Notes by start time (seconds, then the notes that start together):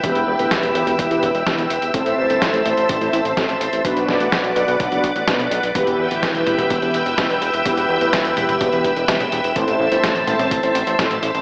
Already playing: B4 E5 G5 E6
0.04 E1 E3 B3 E4 G4 B4, kick, closed hi-hat
0.15 E1, closed hi-hat
0.27 E1
0.39 D1 E3 B3 E4 G4 B4, closed hi-hat
0.51 E1, kick, snare, closed hi-hat
0.63 E1, closed hi-hat
0.75 E1 E3 B3 E4 G4 B4, closed hi-hat
0.87 E1, closed hi-hat
0.99 E1, kick, closed hi-hat
1.10 E1 E3 B3 E4 G4 B4, closed hi-hat
1.23 E1, kick, closed hi-hat
1.34 E1, closed hi-hat
1.47 E1 E3 B3 E4 G4 B4, kick, snare, closed hi-hat
1.58 E1, closed hi-hat
1.70 E1, closed hi-hat
1.82 E1, closed hi-hat
1.94 A1 A2 C4 E4 A4 C5 A5, kick, closed hi-hat
2.06 A1, closed hi-hat
2.18 A1
2.30 G1 A2 C4 E4 A4 C5, closed hi-hat
2.42 A1, kick, snare, closed hi-hat
2.53 A1, closed hi-hat
2.65 A1 A2 C4 E4 A4 C5, closed hi-hat
2.77 A1, closed hi-hat
2.89 A1, kick, closed hi-hat
3.01 A1 A2 C4 E4 A4 C5, closed hi-hat
3.13 A1, closed hi-hat
3.25 A1, closed hi-hat
3.37 A1 A2 C4 E4 A4 C5, kick, snare, closed hi-hat
3.49 A1, closed hi-hat
3.61 A1, closed hi-hat
3.73 A1, closed hi-hat
3.85 B1 B2 B3 D4 F#4 B4 D5 F#5 D6, kick, closed hi-hat
3.96 B1, closed hi-hat
4.08 B1, snare
4.20 A1 B2 B3 D4 F#4 B4, closed hi-hat
4.32 B1, kick, snare, closed hi-hat
4.44 B1, closed hi-hat
4.56 B1 B2 B3 D4 F#4 B4, closed hi-hat
4.68 B1, closed hi-hat
4.80 B1, kick, closed hi-hat
4.92 F#1 B2 B3 D4 F#4 B4, closed hi-hat
5.04 B1, kick, closed hi-hat
5.15 A1, closed hi-hat
5.28 B1 B2 B3 D4 F#4 B4, kick, snare, closed hi-hat
5.39 B1, closed hi-hat
5.51 B1, closed hi-hat
5.63 B1, closed hi-hat
5.75 E1 E3 B3 E4 G4 B4 E5 G5 E6, kick, closed hi-hat
5.87 E1, closed hi-hat
5.99 E1
6.11 D1 E3 B3 E4 G4 B4, closed hi-hat
6.23 E1, kick, snare, closed hi-hat
6.35 E1, closed hi-hat
6.46 E1 E3 B3 E4 G4 B4, closed hi-hat, high tom
6.58 E1, closed hi-hat, high tom
6.70 E1, kick, closed hi-hat
6.82 E1 E3 B3 E4 G4 B4, closed hi-hat
6.94 E1, closed hi-hat
7.06 E1, closed hi-hat
7.18 E1 E3 B3 E4 G4 B4, kick, snare, closed hi-hat
7.30 E1, closed hi-hat
7.42 E1, closed hi-hat
7.54 E1, closed hi-hat
7.66 E1 E3 B3 E4 G4 B4, kick, closed hi-hat
7.77 E1, closed hi-hat
7.89 E1
8.01 D1 E3 B3 E4 G4 B4, closed hi-hat
8.13 E1, kick, snare, closed hi-hat
8.25 E1, closed hi-hat
8.37 E1 E3 B3 E4 G4 B4, closed hi-hat, high tom
8.49 E1, closed hi-hat, high tom
8.61 E1, kick, closed hi-hat
8.72 E1 E3 B3 E4 G4 B4, closed hi-hat
8.84 E1, kick, closed hi-hat
8.96 E1, closed hi-hat
9.08 E1 E3 B3 E4 G4 B4, kick, snare, closed hi-hat
9.20 E1, closed hi-hat, high tom
9.32 E1, closed hi-hat
9.44 E1, closed hi-hat
9.56 A1 A2 C4 E4 A4 C5 A5, kick, closed hi-hat
9.68 A1, closed hi-hat
9.80 A1
9.92 G1 A2 C4 E4 A4 C5, closed hi-hat
10.04 A1, kick, snare, closed hi-hat
10.15 A1, closed hi-hat
10.27 A1 A2 C4 E4 A4 C5, closed hi-hat, high tom
10.39 A1, closed hi-hat, high tom
10.51 A1, kick, closed hi-hat
10.63 A1 A2 C4 E4 A4 C5, closed hi-hat
10.75 A1, closed hi-hat
10.87 A1, closed hi-hat
10.99 A1 A2 C4 E4 A4 C5, kick, snare, closed hi-hat
11.11 A1, closed hi-hat
11.23 A1, closed hi-hat
11.34 A1, closed hi-hat